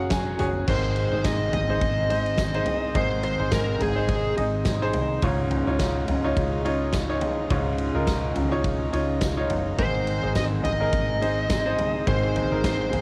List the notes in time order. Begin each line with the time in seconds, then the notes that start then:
Already playing: F#1 C#3 F#3 G#3 C#4 F#4 G#4 A#4 C#5 F5
0.00 F#5
0.09 F#3 C#4 F#4 G#4 G#5, kick, snare, closed hi-hat, tambourine
0.38 F#1 C#4 F#4 G#4 C#5 G#5, closed hi-hat, floor tom
0.66 G#1 G#2 D#3 G#3 C4 D#4 G#4 C5, kick, crash, impact
0.96 ride
1.12 G#1 D#4 G#4 C5
1.24 G#3 C4 D#4 G#4 D#5, kick, snare, ride, tambourine
1.52 G#1 G#3 C4 D#4 G#4 D#5, floor tom, ride
1.70 D#4 G#4 C5
1.80 G#1 G#3 C4 D#4 G#4, kick, ride
2.09 G#3 C4 D#4 G#4 C5, ride
2.26 ride
2.38 G#3 C4 D#4 G#4, kick, snare, ride, tambourine
2.54 D#4 G#4 C5, ride
2.66 floor tom, ride
2.94 G#1 G#2 D#3 G#3 C4 D#4 G#4 C5 D#5, kick, ride
3.23 C5, ride
3.39 G#1 D#4 G#4 C5
3.51 G#3 C4 D#4 G#4 A#4, kick, snare, ride, tambourine
3.80 G#1 G#3 C4 D#4 G#4, floor tom, ride
3.96 D#4 G#4 C5
4.08 G#3 C4 D#4 G#4, kick, ride
4.37 G#1 G#3 C4 D#4 G#4 D#5, ride
4.65 G#3 C4 D#4 G#4, kick, snare, ride, tambourine
4.82 D#4 G#4 C5
4.93 C2, floor tom, ride
5.22 C#2 G#2 C#3 G#3 C#4 D#4 F4 G#4 C#5, kick, ride
5.51 floor tom, ride
5.67 C#2 D#4 F4 C#5
5.79 G#3 C#4 D#4 F4, kick, snare, ride, tambourine
6.07 C#2 C#4 D#4 F4, floor tom, ride
6.24 D#4 F4 C#5
6.36 C#2 G#3 C#4 D#4 F4, kick, ride
6.64 C#4 D#4 F4 C#5, ride
6.92 G#3 C#4 D#4 F4, kick, snare, ride, tambourine
7.09 D#4 F4 C#5
7.21 floor tom, ride
7.50 C#2 G#2 C#3 G#3 C#4 D#4 F4 C#5, kick, ride
7.78 ride
7.95 C#2 D#4 F4 A#4
8.06 G#3 C#4 D#4 F4, kick, snare, ride, tambourine
8.35 C#2 C#4 D#4 F4, floor tom, ride
8.51 D#4 F4 C#5
8.63 G#3 C#4 D#4 F4, kick, ride
8.91 C#2 C#4 D#4 F4 C#5, ride
9.20 G#3 C#4 D#4 F4, kick, snare, ride, tambourine
9.37 D#4 F4 C#5
9.50 F#1, floor tom, ride
9.77 G#1 G#2 D#3 G#3 C4 D#4 G#4 C5, kick, ride
10.07 ride
10.23 G#1 D#4 G#4 C5
10.35 G#3 C4 D#4 G#4 D#5, kick, snare, ride, tambourine
10.63 G#1 G#3 C4 D#4 G#4 D#5, floor tom, ride
10.80 D#4 G#4 A#4
10.91 G#1 G#3 C4 D#4 G#4, kick, ride
11.20 G#3 C4 D#4 G#4 C5, ride
11.48 G#3 C4 D#4 G#4, kick, snare, ride, tambourine
11.66 D#4 G#4 C5
11.78 floor tom, ride
12.06 G#1 G#2 D#3 G#3 C4 D#4 G#4 C5, kick, ride
12.36 floor tom, ride
12.52 G#1 D#4 G#4 A#4
12.63 G#3 C4 D#4 G#4 C5, kick, snare, ride, tambourine
12.91 G#1 G#3 C4 D#4 G#4, floor tom, ride